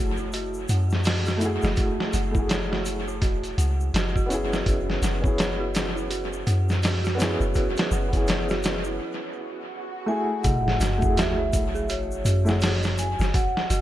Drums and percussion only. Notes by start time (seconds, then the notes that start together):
0.17 shaker
0.32 closed hi-hat, shaker
0.54 shaker
0.68 closed hi-hat, shaker
0.90 snare, shaker
1.04 snare, open hi-hat, shaker
1.25 snare, shaker
1.41 closed hi-hat, shaker
1.62 snare, shaker
1.76 kick, closed hi-hat, shaker
2.00 snare
2.13 closed hi-hat, shaker
2.35 kick, shaker
2.49 snare, closed hi-hat, shaker
2.73 snare
2.85 closed hi-hat, shaker
3.08 shaker
3.22 kick, closed hi-hat, shaker
3.44 closed hi-hat, shaker
3.58 closed hi-hat, shaker
3.80 shaker
3.94 snare, closed hi-hat, shaker
4.16 kick, shaker
4.30 closed hi-hat, shaker
4.53 snare, shaker
4.66 kick, closed hi-hat, shaker
4.90 snare
5.03 snare, closed hi-hat, shaker
5.24 kick, shaker
5.38 snare, closed hi-hat, shaker
5.75 snare, closed hi-hat, shaker
5.97 shaker
6.11 closed hi-hat, shaker
6.33 shaker
6.47 closed hi-hat, shaker
6.69 snare, shaker
6.83 snare, open hi-hat, shaker
7.04 snare, shaker
7.19 snare, closed hi-hat, shaker
7.41 shaker
7.54 kick, closed hi-hat, shaker
7.76 snare, closed hi-hat, shaker
7.91 shaker
8.13 kick, closed hi-hat, shaker
8.27 snare, closed hi-hat, shaker
8.49 snare, shaker
8.63 snare, closed hi-hat, shaker
8.84 shaker
10.44 kick, closed hi-hat, shaker
10.68 snare
10.80 snare, closed hi-hat, shaker
11.02 kick, shaker
11.17 snare, closed hi-hat, shaker
11.53 kick, closed hi-hat, shaker
11.75 shaker
11.89 closed hi-hat, shaker
12.11 shaker
12.25 closed hi-hat, shaker
12.46 snare, shaker
12.61 snare, open hi-hat, shaker
12.83 snare, shaker
12.98 closed hi-hat, shaker
13.19 snare, shaker
13.34 kick, closed hi-hat, shaker
13.57 snare
13.70 closed hi-hat, shaker